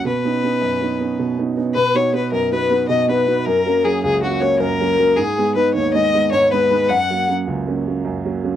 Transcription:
0.05 B2 B4
0.24 B3 C#4 D#4
0.43 B3 C#4 D#4
0.62 F#2
0.81 B3 C#4 D#4
1.00 B3 C#4 D#4
1.19 B2
1.38 B3 C#4 D#4
1.57 B3 C#4 D#4
1.75 B2 B4
1.94 B3 D#4 F#4 C#5
2.13 B3 D#4 F#4 B4
2.32 F#2 A#4
2.51 B3 D#4 F#4 B4
2.70 B3 D#4 F#4
2.89 B2 D#5
3.08 B3 D#4 F#4 B4
3.27 B3 D#4 F#4
3.46 F#2 A#4
3.66 F#3 A#3 C#4
3.85 F#3 A#3 C#4 G#4
4.03 C#2 G#4
4.22 F#3 A#3 C#4 F#4
4.41 F#3 A#3 C#4 C#5
4.59 F#2 A#4
4.80 F#3 A#3 C#4
4.99 F#3 A#3 C#4
5.17 G#2 G#4
5.38 G#3 B3 D#4
5.55 G#3 B3 D#4 B4
5.74 D#2 C#5
5.94 G#3 B3 D#4 D#5
6.14 G#3 B3 D#4
6.32 G#2 C#5
6.51 G#3 B3 D#4 B4
6.71 G#3 B3 D#4
6.89 F#2 F#5
7.10 F#3 A#3 C#4
7.28 F#3 A#3 C#4
7.47 C#2
7.67 F#3 A#3 C#4
7.87 F#3 A#3 C#4
8.05 F#2
8.25 F#3 A#3 C#4
8.44 F#3 A#3 C#4

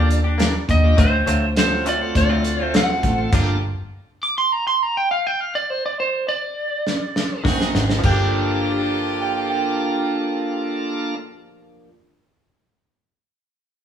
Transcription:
Already playing: D#2 A#3 D4 F4 A4 D5
0.09 muted clean electric guitar stroke, closed hi-hat
0.24 D4 G4
0.38 A#3 D4 G4, snare, closed hi-hat
0.54 muted clean electric guitar stroke
0.68 D#2 D4 D#4 G4 D#5, muted clean electric guitar stroke, kick, closed hi-hat
0.84 A#3 D4 F4 G4
0.97 D2 F#3 A3 C4 F4 F#4 C5, kick, closed hi-hat
1.12 muted clean electric guitar stroke
1.27 D2 F#3 A3 C4 F4, closed hi-hat
1.56 F#3 A3 C4 F4 F#4 C5 F5, muted clean electric guitar stroke, snare, closed hi-hat
1.71 muted clean electric guitar stroke
1.85 F#3 A3 C4 F4 D5, closed hi-hat
2.00 A3 C4 F4 F#4, muted clean electric guitar stroke
2.15 D2 D5, muted clean electric guitar stroke, kick, closed hi-hat
2.29 F#3 A3 C4 F4
2.44 muted clean electric guitar stroke, closed hi-hat
2.60 A3 C4 F4 C5
2.74 F#3 A3 C4 F4 F#5, snare, closed hi-hat
2.88 A3 C4 F4 F#4, muted clean electric guitar stroke
3.03 A1 C4 F4 A4, muted clean electric guitar stroke, kick, closed hi-hat
3.18 A3 C4 F4 A4
3.32 G1 F3 A#3 D4 F4 G4 A4, kick, closed hi-hat, crash
3.48 muted clean electric guitar stroke
4.23 D6
4.38 C6
4.52 A#5
4.67 C6
4.83 A#5
4.97 G5
5.11 F5
5.27 G5
5.40 F5
5.55 D5
5.70 C5
5.86 D5
6.00 C5
6.28 D5
6.87 snare
7.16 snare
7.43 A#1 D#3 G#3 C4 F#4 G#4, kick, snare
7.59 C4 D#4 F#4 A#4, muted clean electric guitar stroke, snare
7.74 G#1 C4 F#4 G#4, muted clean electric guitar stroke, snare
7.89 C4 D#4 F#4 A#4, snare
7.99 F3 A#3 F4 G4
8.04 G1 A#3 D4 F4 G4 A4, kick, crash
8.08 D4
8.12 G4
9.22 G5
9.50 G5

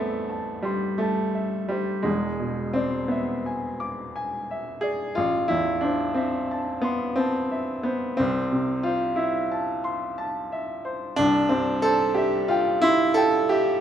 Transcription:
Already playing: A1 E2 A3 B3 C4 D4 C5 E5
0.29 A5
0.62 G3 C6
0.98 A3 A5
1.34 E5
1.69 G3 C5
2.03 E1 E2 G#3
2.40 B2
2.73 C4 D5
3.08 B3 E5
3.46 G#5
3.80 D6
4.16 G#5
4.51 E5
4.81 G#4 D5
5.15 A1 F4
5.48 E2 E4
5.81 D4 C5
6.14 C4 E5
6.51 A5
6.82 B3 C6
7.16 C4 A5
7.51 E5
7.83 B3 C5
8.17 C2 C4
8.52 C3
8.83 F4 C5
9.16 E4 E5
9.52 A5
9.84 C6
10.18 A5
10.52 E5
10.85 C5
11.16 C2 D4
11.49 G2 C4
11.82 A4 C5
12.14 G4 E5
12.48 F4 G5
12.81 E4 C6
13.14 A4 G5
13.49 G4 E5

